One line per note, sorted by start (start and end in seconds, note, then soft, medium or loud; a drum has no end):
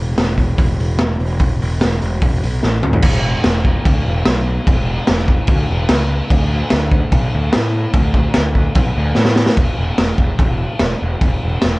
0.00 0.17 E1 medium
0.17 0.37 E1 medium
0.17 snare loud
0.17 open hi-hat medium
0.38 0.58 E1 medium
0.38 kick medium
0.38 open hi-hat medium
0.58 0.78 E1 medium
0.58 kick loud
0.58 open hi-hat medium
0.79 0.99 E1 medium
0.79 open hi-hat medium
0.99 1.19 E1 medium
0.99 snare loud
0.99 open hi-hat medium
1.19 1.39 E1 medium
1.19 open hi-hat medium
1.40 1.60 E1 medium
1.40 kick loud
1.40 open hi-hat medium
1.62 1.81 E1 medium
1.62 open hi-hat medium
1.81 2.02 E1 medium
1.81 snare loud
1.81 open hi-hat medium
2.02 2.21 E1 medium
2.02 open hi-hat medium
2.22 2.42 E1 medium
2.22 kick loud
2.22 open hi-hat medium
2.43 2.63 B1 medium
2.43 open hi-hat medium
2.63 2.82 A1 medium
2.63 snare medium
2.83 3.02 D2 medium
2.83 mid tom medium
2.93 floor tom medium
3.02 3.34 E1 loud
3.02 kick loud
3.02 crash loud
3.02 crash medium
3.44 3.76 E1 medium
3.44 snare loud
3.44 crash medium
3.65 kick medium
3.85 4.01 D2 medium
3.85 kick loud
3.85 crash medium
4.06 4.21 E1 medium
4.25 4.57 B1 medium
4.25 snare loud
4.25 crash medium
4.67 4.98 E1 loud
4.67 kick loud
4.67 crash medium
5.07 5.39 E1 medium
5.07 snare loud
5.07 crash medium
5.17 snare soft
5.28 kick medium
5.47 5.64 D2 loud
5.47 kick loud
5.47 crash medium
5.70 5.85 E1 medium
5.89 6.20 C#2 medium
5.89 snare loud
5.89 crash medium
6.30 6.61 D2 medium
6.30 kick loud
6.30 crash medium
6.70 7.03 D2 medium
6.70 snare loud
6.70 crash medium
6.91 kick medium
7.12 7.28 B1 medium
7.12 kick loud
7.12 crash medium
7.35 7.49 D2 medium
7.53 7.86 A2 medium
7.53 snare loud
7.53 crash medium
7.93 8.25 D2 loud
7.93 kick loud
7.93 crash medium
8.14 kick medium
8.34 8.67 D2 medium
8.34 snare loud
8.34 crash medium
8.55 kick medium
8.75 8.91 B1 medium
8.75 kick loud
8.75 crash medium
8.97 9.12 D2 medium
9.15 9.48 A2 medium
9.15 snare medium
9.25 snare medium
9.36 snare medium
9.46 snare loud
9.57 9.70 E1 medium
9.57 kick loud
9.57 crash medium
9.78 9.91 E1 medium
9.98 10.11 E1 medium
9.98 snare medium
9.98 crash medium
10.18 10.31 E1 medium
10.18 kick medium
10.39 10.64 E1 medium
10.39 kick loud
10.39 crash medium
10.79 10.93 E1 medium
10.79 snare loud
10.79 crash medium
11.02 11.14 E1 medium
11.21 11.34 E1 loud
11.21 kick loud
11.21 crash medium
11.43 11.56 E1 medium
11.62 11.76 E1 medium
11.62 snare loud
11.62 crash medium